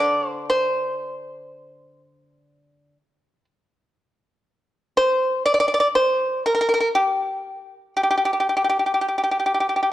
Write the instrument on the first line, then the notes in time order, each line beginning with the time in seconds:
pipa
Already playing: D3
0.00 D5
0.28 C5
0.50 C5
4.97 C5
5.46 D5
5.54 D5
5.60 D5
5.68 D5
5.74 D5
5.80 D5
5.95 C5
6.46 A#4
6.55 A#4
6.61 A#4
6.69 A#4
6.74 A#4
6.80 A#4
6.95 G4
7.97 G4
8.03 G4
8.11 G4
8.18 G4
8.25 G4
8.33 G4
8.40 G4
8.49 G4
8.57 G4
8.64 G4
8.69 G4
8.79 G4
8.86 G4
8.94 G4
9.01 G4
9.08 G4
9.18 G4
9.23 G4
9.31 G4
9.40 G4
9.46 G4
9.54 G4
9.60 G4
9.69 G4
9.76 G4
9.83 G4